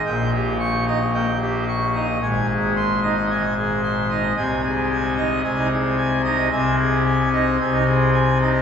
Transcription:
<<
  \new Staff \with { instrumentName = "Pipe organ" } { \time 4/4 \key aes \major \tempo 4 = 111 << { g''8 g'8 des'''8 ees''8 g''8 g'8 des'''8 ees''8 | aes''8 aes'8 c'''8 ees''8 aes''8 aes'8 c'''8 ees''8 | aes''8 aes'8 aes''8 ees''8 aes''8 aes'8 aes''8 ees''8 | \key aes \lydian aes''8 aes'8 aes''8 ees''8 aes''8 aes'8 aes''8 ees''8 | } \\ { bes,4. ees'16 r16 bes16 r4 r16 ees'16 r16 | aes,4. ees'16 r16 ees16 r4 r16 ees'16 r16 | c4. ees'16 r16 c16 ees'16 r4 ees'16 r16 | c4. ees'16 r16 c16 ees'16 r4 ees'16 r16 | } >> }
  \new Staff \with { instrumentName = "Pipe organ" } { \clef bass \time 4/4 \key aes \major bes,,1 | aes,,1 | c,2 c,2 | \key aes \lydian c,2 c,2 | }
>>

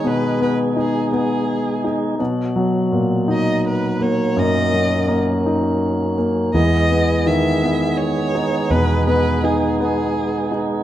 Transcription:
<<
  \new Staff \with { instrumentName = "Violin" } { \time 6/8 \key e \lydian \tempo 4. = 55 b'8 b'8 gis'8 gis'4 r8 | r4. dis''8 b'8 cis''8 | dis''4 r2 | dis''4 e''4 cis''4 |
b'8 b'8 gis'8 gis'4 r8 | }
  \new Staff \with { instrumentName = "Grand piano" } { \time 6/8 \key e \lydian <b, b dis'>8 b8 dis'8 b4 dis'8 | b,8 fis8 ais,8 dis'4 ais8 | fis,8 fis8 ais8 dis'4 ais8 | e8 b8 dis8 b4 dis'8 |
b,8 b8 dis'8 b4 dis'8 | }
  \new Staff \with { instrumentName = "Tonewheel organ" } { \time 6/8 \key e \lydian <gis gis'>2. | fis2. | cis'2. | <gis b gis'>2.~ |
<gis b gis'>2. | }
  \new Staff \with { instrumentName = "Fingered electric bass" } { \clef bass \time 6/8 \key e \lydian r2. | r2. | r2. | e,2. |
e,2. | }
>>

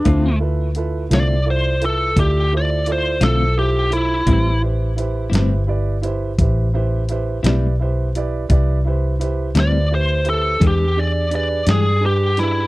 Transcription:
<<
  \new Staff \with { instrumentName = "Lead electric guitar" } { \time 12/8 \key a \minor \tempo 4. = 57 d'8 r4 d''8 c''8 a'8 g'8 d''8 c''8 a'8 g'8 e'8~ | e'8 r1 r4. | r4. d''8 c''8 a'8 g'8 d''8 d''8 gis'8 g'8 e'8 | }
  \new Staff \with { instrumentName = "Upright piano" } { \time 12/8 \key a \minor <e' f' a' c''>8 <e' f' a' b'>8 <e' f' a' b'>8 <e' f' a' c''>8 <e' f' a' d''>8 <e' f' a' b'>8 <e' f' a' d''>8 <e' f' a' c''>8 <e' f' a' d''>8 <e' f' a' c''>8 <e' f' a' c''>8 <e' f' a' c''>8 | <e' g' b' c''>8 <e' g' b' c''>8 <e' g' b' c''>8 <e' g' b' c''>8 <e' g' b' d''>8 <e' g' b' c''>8 <e' g' b' c''>8 <e' g' b' c''>8 <e' g' b' c''>8 <e' g' b' d''>8 <e' g' b' c''>8 <e' g' b' d''>8 | <e' g' b' d''>8 <e' g' b' c''>8 <e' g' b' c''>8 <e' g' b' c''>8 <e' g' b' c''>8 <e' g' b' c''>8 <d' g' gis' b'>8 <d' g' gis' d''>8 <d' g' gis' b'>8 <d' g' gis' d''>8 <d' g' gis' b'>8 <d' g' gis' b'>8 | }
  \new Staff \with { instrumentName = "Clean electric guitar" } { \time 12/8 \key a \minor <d a c' f'>8 r4 <d a c' f'>8 r2 r8 <d a c' f'>8 r4 | <a, g c' e'>8 r4 <a, g c' e'>8 r2 r8 <a, g c' e'>8 r4 | r4. <a, g c' e'>8 r4 <e gis d' g'>8 r4 <e gis d' g'>8 r4 | }
  \new Staff \with { instrumentName = "Fingered electric bass" } { \clef bass \time 12/8 \key a \minor d,4. c,4. d,4. b,,4. | a,,4. g,,4. a,,4. b,,4. | c,4. d,4. e,4. g,4. | }
  \new DrumStaff \with { instrumentName = "Drums" } \drummode { \time 12/8 <hh bd>4 hh8 <hh sn>4 hh8 <hh bd>4 hh8 <hh sn>4 hh8 | <hh bd>4 hh8 <hh sn>4 hh8 <hh bd>4 hh8 <hh sn>4 hh8 | <hh bd>4 hh8 <hh sn>4 hh8 <hh bd>4 hh8 <hh sn>4 <hh sn>8 | }
>>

